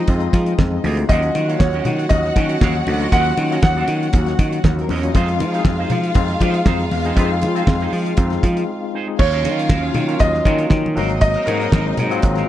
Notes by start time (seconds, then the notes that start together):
Already playing: F3 G#3 C4 D#4 F4 G#4 D#5
0.07 F2 G#3 C4 D#4 F4, muted clean electric guitar stroke, kick, closed hi-hat, muted conga
0.20 muted clean electric guitar stroke, closed hi-hat
0.33 F3, kick, closed hi-hat, muted conga
0.46 muted clean electric guitar stroke, closed hi-hat
0.59 F2, kick, snare, high conga
0.73 muted clean electric guitar stroke
0.84 D2 C4 F4 G#4 D#5, open hi-hat, high conga
0.97 G#3 C4 D#4 G#4, muted clean electric guitar stroke, closed hi-hat
1.09 D#2 D#3 F#3 A#3 C#4 F4 F#4 A#4 D#5 F#5, kick, closed hi-hat
1.23 muted clean electric guitar stroke, closed hi-hat
1.35 D#3, muted clean electric guitar stroke, closed hi-hat, muted conga
1.48 F#3 A#3 C#4 F#4 A#4 F5, closed hi-hat
1.59 D#2 C#5, muted clean electric guitar stroke, kick, snare, high conga
1.73 C#4 F#4 A#4 D#5, closed hi-hat
1.85 D#3, muted clean electric guitar stroke, closed hi-hat, muted conga, low conga
1.99 muted clean electric guitar stroke, closed hi-hat
2.09 D#2 F#3 A#3 C#4 F#4 D#5, muted clean electric guitar stroke, kick, closed hi-hat, muted conga
2.24 muted clean electric guitar stroke, snare
2.36 D#3 C#4 F#4 A#4 D#5, kick, closed hi-hat, muted conga
2.49 muted clean electric guitar stroke, closed hi-hat
2.61 D#2 C#4 F#4 A#4 F5, kick, snare, high conga
2.76 muted clean electric guitar stroke
2.87 D2, muted clean electric guitar stroke, open hi-hat, high conga
3.00 F#3 A#3 C#4 F4 F#4 A#4 D#5, closed hi-hat
3.11 D#2 F#3 A#3 C#4 F4 F#4 A#4 D#5 F#5, kick, closed hi-hat
3.25 muted clean electric guitar stroke, closed hi-hat
3.37 D#3, muted clean electric guitar stroke, closed hi-hat, muted conga
3.50 F#3 A#3 C#4 F#4 A#4 D#5, closed hi-hat
3.63 D#2 F#5, kick, snare, high conga
3.77 C#4 F#4 A#4 D#5
3.88 D#3, muted clean electric guitar stroke, closed hi-hat, muted conga
4.02 muted clean electric guitar stroke, closed hi-hat
4.13 D#2 F#3 A#3 C#4 F#4, muted clean electric guitar stroke, kick, closed hi-hat, muted conga
4.26 muted clean electric guitar stroke, snare, closed hi-hat
4.39 D#3, kick, closed hi-hat, muted conga
4.52 muted clean electric guitar stroke, closed hi-hat
4.64 D#2, kick, snare, high conga
4.78 A#3 A#4, muted clean electric guitar stroke, closed hi-hat
4.89 E2 C4 C#4 F#4 A#4 C5 D#5, open hi-hat, high conga
4.98 F#3 C#4 C#5
5.03 A#3 C#4 D#4 F4 D#5, muted clean electric guitar stroke, closed hi-hat
5.14 F2 F3 G#3 C4 D#4 F4 G#4 C5 D#5 F5, kick, closed hi-hat
5.28 muted clean electric guitar stroke, closed hi-hat
5.40 F3, muted clean electric guitar stroke, closed hi-hat, muted conga
5.52 G#3 C4 D#4 F#4 G#4 C5 F5, closed hi-hat
5.60 G#4
5.65 F2, kick, snare, high conga
5.79 D#4 G#4 C5 D#5
5.90 F3, muted clean electric guitar stroke, closed hi-hat, muted conga, low conga
6.03 muted clean electric guitar stroke, closed hi-hat
6.14 F2 G#3 C4 D#4 F4, muted clean electric guitar stroke, kick, closed hi-hat, muted conga
6.28 muted clean electric guitar stroke, snare, closed hi-hat
6.41 F3 D#4 G#4 C5 D#5, kick, closed hi-hat, muted conga
6.54 muted clean electric guitar stroke, closed hi-hat
6.66 F2 D#4 G#4 C5 F5, kick, snare, high conga
6.80 muted clean electric guitar stroke, closed hi-hat
6.91 E2, muted clean electric guitar stroke, open hi-hat, high conga
7.04 G#3 C4 D#4 G#4 C5 D#5, closed hi-hat
7.16 F2 G#3 C4 D#4 F4 G#4 C5 D#5, kick, closed hi-hat
7.31 muted clean electric guitar stroke
7.42 F3, muted clean electric guitar stroke, closed hi-hat, muted conga
7.55 G#3 C4 D#4 F4 G#4 C5 D#5, closed hi-hat
7.67 F2, muted clean electric guitar stroke, kick, snare, high conga
7.80 D#4 G#4 C5 D#5, closed hi-hat
7.93 F3, muted clean electric guitar stroke, open hi-hat
8.06 muted clean electric guitar stroke, closed hi-hat
8.17 F2 G#3 C4 D#4 F4, muted clean electric guitar stroke, kick, closed hi-hat, muted conga
8.30 muted clean electric guitar stroke, snare, closed hi-hat
8.43 F3, kick, closed hi-hat, muted conga
8.57 muted clean electric guitar stroke, closed hi-hat
8.82 muted clean electric guitar stroke
8.94 D#4 G#4 C5 D#5
9.07 G#3 C4 D#4 G#4, muted clean electric guitar stroke
9.19 D#2 D#3 F#3 C#4 F4 C#5 F5, muted clean electric guitar stroke, kick, crash
9.32 C#4 F#4 A#4 D#5, closed hi-hat
9.44 D#3 F#3 A#3 C#4 F4 F#4 A#4 D#5, closed hi-hat, muted conga
9.58 muted clean electric guitar stroke, closed hi-hat
9.69 D#2 C#4 F#4 A#4 D#5, kick, snare, high conga
9.82 F#3 A#3 C#4 F4, muted clean electric guitar stroke
9.94 D#3, muted clean electric guitar stroke, closed hi-hat, low conga
10.07 F#3 A#3 C#4 F4 F#4 A#4 F5, closed hi-hat
10.20 D#2 D#5, kick, closed hi-hat, muted conga
10.34 muted clean electric guitar stroke, snare
10.45 D#3 F#3 A#3 C#4 F4 F#4 A#4 D#5, kick, closed hi-hat, muted conga
10.58 C#4 F#4 A#4 F5, closed hi-hat
10.70 D#3, kick, snare, high conga
10.85 muted clean electric guitar stroke, high conga
10.95 G#1 F#3 G#3 A#3 C4 D#4 F#4 A#4 D#5, open hi-hat, high conga
11.10 muted clean electric guitar stroke, closed hi-hat
11.21 D#5, muted clean electric guitar stroke, kick, closed hi-hat
11.34 C4 F#4 A#4 D#5, closed hi-hat
11.46 G#2 F#3 A#3 C4 F#4 A#4 D#5, closed hi-hat, muted conga
11.61 muted clean electric guitar stroke, closed hi-hat
11.72 G#1 C4 F#4 A#4 D#5, kick, snare, high conga
11.85 F#3 A#3 C4 D#4, muted clean electric guitar stroke
11.97 G#2, muted clean electric guitar stroke, closed hi-hat, muted conga, low conga
12.10 F#3 A#3 C4 F4 F#4 A#4 D#5, closed hi-hat
12.22 G#1, muted clean electric guitar stroke, kick, closed hi-hat, muted conga
12.35 C4 F#4 A#4 F5, snare, closed hi-hat